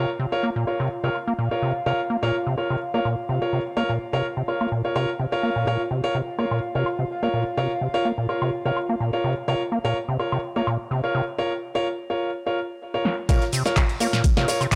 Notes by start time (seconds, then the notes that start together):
Already playing: F4 F5
0.19 C3
0.32 F4 A#4 C#5
0.43 A#3
0.56 A#2
0.67 F4 A#4 C#5, high woodblock
0.80 C3, high woodblock
1.04 C3 F4 A#4 C#5
1.15 high woodblock
1.27 A#3
1.39 A#2
1.51 F4 A#4 C#5
1.62 C3
1.86 C3 F4 A#4 C#5
2.10 A#3
2.23 A#2 F4 A#4 C#5
2.47 C3
2.58 F4 A#4 C#5, high woodblock
2.70 C3, high woodblock
2.94 A#3 F4 A#4 C#5
3.05 A#2, high woodblock
3.29 C3
3.42 F4 A#4 C#5
3.53 C3
3.77 A#3 F4 A#4 C#5
3.89 A#2
4.13 C3 F4 A#4 C#5
4.37 C3
4.48 F4 A#4 C#5, high woodblock
4.61 A#3, high woodblock
4.72 A#2
4.85 F4 A#4 C#5
4.96 C3 F4 A#4 C#5, high woodblock
5.19 C3
5.32 F4 A#4 C#5
5.43 A#3
5.56 A#2
5.67 A#2 F4 A#4 C#5 F5
5.91 C3
6.04 F4 A#4 C#5
6.15 C3
6.39 A#3 F4 A#4 C#5, high woodblock
6.51 A#2, high woodblock
6.75 C3 F4 A#4 C#5
6.86 high woodblock
6.99 C3
7.23 A#3 F4 A#4 C#5
7.34 A#2
7.57 C3 F4 A#4 C#5
7.81 C3
7.94 F4 A#4 C#5
8.05 A#3
8.18 A#2
8.29 F4 A#4 C#5, high woodblock
8.42 C3, high woodblock
8.65 C3 F4 A#4 C#5
8.77 high woodblock
8.89 A#3
9.00 A#2
9.13 F4 A#4 C#5
9.24 C3
9.48 C3 F4 A#4 C#5
9.72 A#3
9.85 A#2 F4 A#4 C#5
10.08 C3
10.19 F4 A#4 C#5, high woodblock
10.32 C3, high woodblock
10.56 A#3 F4 A#4 C#5
10.67 A#2, high woodblock
10.91 C3
11.04 F4 A#4 C#5
11.15 C3
11.38 F4 A#4 C#5
11.75 F4 A#4 C#5
12.10 F4 A#4 C#5
12.46 F4 A#4 C#5
12.94 F4 A#4 C#5
13.05 snare
13.29 A#2 F4 A#4 C#5, kick, closed hi-hat, tambourine, shaker
13.42 snare, closed hi-hat
13.52 C3, open hi-hat, tambourine, shaker
13.65 F4 A#4 C#5, snare, closed hi-hat, shaker
13.76 C3, kick, snare, clap, closed hi-hat, open hi-hat, shaker
13.89 closed hi-hat
14.00 A#3 F4 A#4 C#5, open hi-hat, tambourine, shaker
14.13 A#2, snare, closed hi-hat, shaker
14.24 kick, closed hi-hat, tambourine, shaker
14.37 C3 F4 A#4 C#5, snare, closed hi-hat
14.48 F4 A#4 C#5, open hi-hat, tambourine, shaker
14.61 C3, closed hi-hat, high woodblock, shaker
14.72 kick, snare, clap, closed hi-hat, tambourine